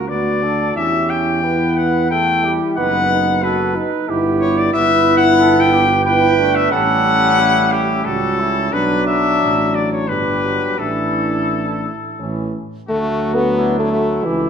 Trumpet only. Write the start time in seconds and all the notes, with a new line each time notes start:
0.08 D5
0.76 E5
1.10 G5
1.77 F#5
2.10 G5
2.77 F#5
3.43 B4
4.40 C#5
4.58 D5
4.73 E5
5.17 F#5
5.60 G5
6.05 G5
6.55 E5
6.72 F#5
7.72 G4
8.05 A4
8.73 B4
9.07 E5
9.75 D5
9.92 C#5
10.08 B4
10.79 A4
12.89 F#4
13.57 D4
13.92 E4